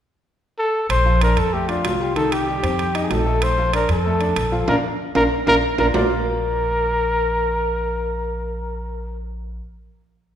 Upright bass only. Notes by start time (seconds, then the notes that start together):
0.89 A#1
1.37 F2
1.85 C2
2.63 F2
3.11 A#1
3.89 F2
4.36 A#1
4.67 A#1
5.15 A#1
5.47 A#1
5.79 A#1
5.95 A#1